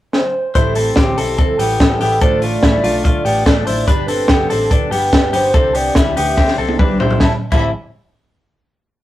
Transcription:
0.13 C5, snare
0.55 A1 A2 E3 G3 C4 E4 A4 C5, kick, closed hi-hat
0.75 C4 A4, open hi-hat
0.96 A1 C4 G4, kick, snare, closed hi-hat
1.06 G3 C4 E4
1.17 B1 E3 G3 C4 E4 A4, open hi-hat
1.38 C4 A4, kick, closed hi-hat
1.58 A1 E3 G3 B3 C4 E4 G4, open hi-hat
1.79 A1 E3 G3 C4 E4 A4, kick, snare, closed hi-hat
2.01 A1 E3 G3 B3 C4 E4 G4, open hi-hat
2.21 A1 A2 D3 A3 D4 F4 A4 C5, kick, closed hi-hat
2.42 A3 F4 D5, open hi-hat
2.63 A1 A3 E4, kick, snare, closed hi-hat
2.73 A3 D4 F4
2.83 B1 D3 A3 D4 F4, open hi-hat
3.04 A3 F4, kick, closed hi-hat
3.25 A1 D3 A3 B3 D4 F4 G4, open hi-hat
3.45 A1 D3 A3 D4 F4 A4 D5, kick, snare, closed hi-hat
3.66 A1 D3 A3 D4 E4 F4 C5, open hi-hat
3.87 G1 G3 B3 D4 G4 B4, kick, closed hi-hat
4.08 C4 A4, open hi-hat
4.28 G1 B3 G4 A4, kick, snare, closed hi-hat
4.39 B3 D4 G4
4.49 A1 G3 B3 C4 D4 G4 A4, open hi-hat
4.71 D4 A4 B4, kick, closed hi-hat
4.91 G1 G3 B3 D4 G4, open hi-hat
5.12 G1 G3 B3 D4 G4, kick, snare, closed hi-hat
5.32 G1 G3 B3 D4 G4 C5, open hi-hat
5.53 C2 C3 E3 C4 D4 G4 A4, kick, closed hi-hat
5.75 B3 G4 D5, open hi-hat
5.95 C2 G3 E4 E5, kick, snare, closed hi-hat
6.06 C4 D4 G4
6.16 D2 E3 B3 C4 D4 G4, open hi-hat
6.37 C4 G4, kick, snare
6.48 snare
6.57 C2 E3 C4 D4 G4 A4
6.69 high tom
6.79 C2 E3 C4 D4 G4 B4, kick, mid tom
7.00 C2 E3 C4 D4 E4 G4 C5, floor tom
7.11 floor tom
7.20 A1 A2 E3 G3 C4 E4 A5, kick, snare
7.51 A1 A2 E3 G3 C4 E4 A5, kick, crash

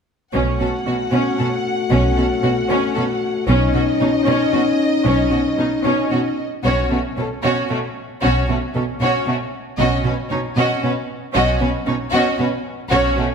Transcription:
0.33 B1 B2 A3 C#4 F#4 F#5
0.60 B2 C#4 A4
0.85 B2 C#4 F#4
1.11 B2 C#4
1.38 B2 C#4 A4
1.90 B1 B2 C#4
2.16 B2 C#4 A4
2.42 B2 C#4 F#4
2.69 B2 C#4
2.94 B2 C#4 A4
3.47 B1 B2 C#4 D#4 D#5
3.74 B2 C#4 F#4
4.00 B2 C#4 D#4
4.26 B2 C#4
4.52 B2 C#4 F#4
5.03 B1 B2 C#4
5.30 B2 C#4 F#4
5.57 B2 C#4 D#4
5.84 B2 C#4
6.11 B2 C#4 F#4
6.65 B1 B2 C#4 F#4 C#5
6.90 B2 A3 C#4 F#4
7.17 B2 C#4 A4
7.43 B2 C#4 F#4 C#5
7.70 B2 A3 C#4 F#4
8.21 B1 B2 C#4 F#4 C#5
8.48 B2 A3 C#4 F#4
8.74 B2 C#4 A4
9.01 B2 C#4 F#4 C#5
9.27 B2 A3 C#4 F#4
9.78 B1 B2 C#4 F#4 D#5
10.04 B2 C#4 B4
10.31 B2 C#4 D#4 C#5
10.56 B2 C#4 F#4 D#5
10.83 B2 C#4 B4
11.34 B1 B2 C#4 F#4 D#5
11.60 B2 C#4 B4
11.86 B2 C#4 D#4 C#5
12.12 B2 C#4 F#4 D#5
12.39 B2 C#4 B4
12.91 B1 B2 C#4 F#4 C#5
13.18 B2 A3 C#4 F#4

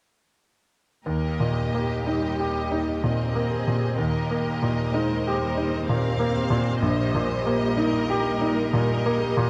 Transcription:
1.06 D#2 A#3 G4 A#4 D#5
1.40 A#2
1.57 G4
1.74 A#3
2.05 G3 D#4 D#5
2.39 G4
2.71 D#4
3.03 A#2 C4 G4 A#4 D#5
3.35 A#3
3.52 G#4
3.67 A#2
3.98 D#2 A#3 G4 A#4 D#5
4.31 A#3
4.46 A#4
4.62 A#2
4.93 G#3 D#4 C5
5.27 G4
5.41 G3
5.57 D#4
5.87 A#2 C4 G4 A#4 F5
6.19 A#3
6.34 C5
6.50 A#2
6.80 A#1 A#2 A#3 G4 D#5
7.15 A#2
7.28 G3
7.46 A#3
7.75 D#4 A#4
8.10 G4
8.41 D#4
8.71 A#2 G3 A#4 D#5
9.06 A#3
9.20 G4
9.37 A#2

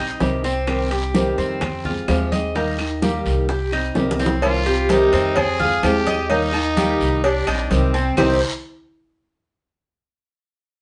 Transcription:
Already playing: A#1 D#4 G4 G5
0.00 G3 C4
0.20 C2 C3 D#3 G3 C4 G4, high bongo, low bongo, high conga, short guiro
0.44 G3 C4 G4, high bongo, short guiro
0.67 C3 D#3 G3 C4 G4, high bongo, high conga, high timbale, long guiro, claves
0.91 G3 C4 G4, high conga, high timbale
1.14 C3 D#3 G3 C4 G4, high bongo, high conga, short guiro
1.38 F2 C4, high conga, short guiro
1.61 muted nylon-string guitar stroke, high bongo, high conga, low conga, high timbale, long guiro, claves
1.85 G#3 C4 F4 G4, high conga, low conga
2.08 D#2 C3 F3 G#3 C4 G4, high bongo, low bongo, high conga, high timbale, short guiro, claves
2.32 G#3 C4 G4 D#5, high conga, high timbale, short guiro
2.55 D#3 G3 A#3 D#4 G4, high bongo, high conga, high timbale, long guiro
2.79 A#3 D#4 G4, high bongo, high conga, high timbale, claves
3.02 D#3 G3 A#3 D#4 G4, high bongo, high conga, short guiro
3.25 C2, high conga, high timbale, short guiro
3.49 G4, muted nylon-string guitar stroke, high bongo, high conga, long guiro
3.72 G3 C4 D#4 G4, high bongo, high conga, high timbale, claves
3.95 C2 C3 D#3 G3 C4 G4, high bongo, high conga, high timbale, short guiro
4.11 low bongo
4.19 G3 C4 G4, low timbale, short guiro
4.26 low bongo
4.42 C3 D#3 G3 C4 F4 G4, cowbell, high conga, low agogo, long guiro, claves
4.66 G3 C4 G4, high conga
4.89 C3 D#3 G3 C4 D#4 G4, cowbell, high conga, low agogo, short guiro
5.13 F2 C4, cowbell, low agogo, short guiro
5.36 G#4, muted nylon-string guitar stroke, cowbell, high conga, low conga, low agogo, long guiro, claves
5.59 G#3 C4 F4 G4, high conga, low conga
5.83 D#2 C3 F3 G#3 C4 G4, cowbell, high conga, low timbale, low agogo, short guiro, claves
6.06 G#3 C4 G4 D#5, cowbell, high conga, low agogo, short guiro
6.29 D#3 G3 A#3 D#4 G4, cowbell, high conga, long guiro
6.53 A#3 D#4 G4, high conga, low agogo, claves
6.76 D#3 G3 A#3 D#4 G4, cowbell, high conga, low agogo, short guiro
7.00 C2, high conga, short guiro
7.24 D4 G4, muted nylon-string guitar stroke, cowbell, high conga, low agogo, long guiro
7.47 A#1 G3 C4 D#4 G4, cowbell, high conga, low agogo, claves
7.70 C2 C3 D#3 G3 C4 G4, cowbell, high conga, short guiro
7.94 G3 C4 G4, low agogo, short guiro
8.17 C2 C3 D#3 G3 C4 D#4 G4 C5, low bongo, low conga, low timbale, long guiro, claves

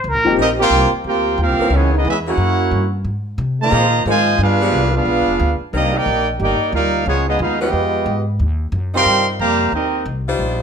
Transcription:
0.04 C#2
0.08 A#4
0.14 A#1
0.25 G1 F3 A#3 C4 D#4 G4
0.37 A#1 F3 A#3 C4 D#4 G4 A#4 D#5
0.59 A#3 C4 F4 G4 A#4 C5 G5
0.70 C2
0.93 muted upright bass stroke
1.04 D2 A#3 C4 F4 G4 A#4 C5 G5
1.38 D#2 A#3 C4 F4
1.42 C4 G4 A#4 F5
1.49 C2
1.59 A#1 E3 B3 C#4 A#4
1.70 C#2 E3 G#3 C#4
1.75 B3 E4 G#4 C#5
1.92 D#4
1.97 B3 E4 G#4 D#5
2.05 E2 G#3 B3 E4
2.09 C#4 G#4 B4 E5
2.27 F#3 A#3 C#4 E4 F#4 G#4 A#4 C#5 F#5
2.37 F#2
2.71 G2
3.05 G#2
3.38 C3
3.60 D#3 F3 A#3 F4 C5 D#5 A#5
3.72 A#2 F3 A#3 C4 G#4
4.06 G#2 D#3 F3 G#3 A#3 C4 F4 A#4 C5 D#5
4.10 G#5
4.38 G2 B3 D4 F4
4.43 D4 G#4 B4 F5
4.62 F3 G3 G#3 B3
4.72 C2
4.92 B3 D4 F4
4.96 D4 G#4 B4 F5
5.05 B1
5.17 G1
5.28 F1
5.40 D2
5.61 muted upright bass stroke
5.72 C2 D#3 G3 A#3 C4 D#4 G4 A#4 D5 D#5
5.77 A#3 D4
5.93 A#3 D#4 G4
5.97 D#4 A#4 D5 G5
6.06 A#1
6.39 G1 A#3 D#4 G4 A#4 D5 G5
6.60 muted upright bass stroke
6.72 D2 G3 A#3 D#4 F4 A#4 D5 F5
7.06 C#2 F3 G#3 B3 C#4 F4 G#4 C#5
7.27 G#3 B3 D#4 F4 G#4 D#5
7.39 D#2 G#3 B3 D#4 F4 G#4 B4 F5
7.60 F3 G#3 B3 C#4 D#4 F4 G4 B4 D#5 G5
7.73 F2
8.06 G#2
8.40 D#2
8.72 F#2
8.94 C3 G3 C4 D#4 F4 A#4 C5 F5 G5 C6
9.05 G2
9.39 F2 C3 G3 A#3 G4 C5 F5 A#5
9.72 D#2 A#3 C4 D#4 G4 A#4 D#5
10.06 C2
10.28 G3 D#4 F4 C5
10.39 A#1

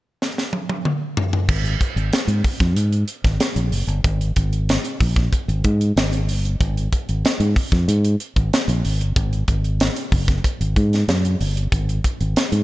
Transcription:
0.22 snare
0.38 snare
0.53 high tom
0.69 high tom
0.85 mid tom
1.17 floor tom
1.33 floor tom
1.49 G#1, kick, crash
1.65 closed hi-hat
1.81 kick, closed hi-hat
1.96 G#1, closed hi-hat
2.13 muted fingered electric bass stroke, snare, closed hi-hat
2.27 G#2, closed hi-hat
2.44 kick, open hi-hat
2.60 F2, kick, snare, closed hi-hat
2.76 G#2, closed hi-hat
2.92 closed hi-hat
3.08 closed hi-hat
3.24 G#1, kick, snare, closed hi-hat
3.40 snare, closed hi-hat
3.56 A#1, closed hi-hat
3.72 F#1, open hi-hat
3.87 G1, closed hi-hat
4.04 G#1, kick, closed hi-hat
4.21 closed hi-hat
4.36 G#1, kick, closed hi-hat
4.53 closed hi-hat
4.69 snare, closed hi-hat
4.84 closed hi-hat
5.01 A#1, kick, open hi-hat
5.16 kick, snare, closed hi-hat
5.33 kick, closed hi-hat
5.48 G#1, closed hi-hat
5.64 G#2, kick, closed hi-hat
5.81 closed hi-hat
5.96 G#1, snare, closed hi-hat
6.13 closed hi-hat
6.29 G1, open hi-hat
6.45 closed hi-hat
6.60 G#1, kick, closed hi-hat
6.77 closed hi-hat
6.93 kick, closed hi-hat
7.09 G#1, closed hi-hat
7.24 muted fingered electric bass stroke, snare, closed hi-hat
7.40 G#2, closed hi-hat
7.56 kick, open hi-hat
7.72 F2, kick, snare, closed hi-hat
7.88 G#2, closed hi-hat
8.05 closed hi-hat
8.20 closed hi-hat
8.36 G#1, kick, closed hi-hat
8.53 snare, closed hi-hat
8.68 A#1, closed hi-hat
8.85 G#1, open hi-hat
9.00 G1, closed hi-hat
9.16 G#1, kick, closed hi-hat
9.33 closed hi-hat
9.48 G#1, kick, closed hi-hat
9.64 closed hi-hat
9.80 snare, closed hi-hat
9.96 closed hi-hat
10.12 F#1, kick, open hi-hat
10.28 kick, snare, closed hi-hat
10.44 kick, closed hi-hat
10.61 G#1, closed hi-hat
10.76 G#2, kick, closed hi-hat
10.93 snare, closed hi-hat
11.08 F#2, snare, closed hi-hat
11.25 closed hi-hat
11.41 G1, open hi-hat
11.57 closed hi-hat
11.72 G#1, kick, closed hi-hat
11.89 closed hi-hat
12.04 kick, closed hi-hat
12.21 G#1, closed hi-hat
12.36 snare, closed hi-hat
12.52 G#2, closed hi-hat

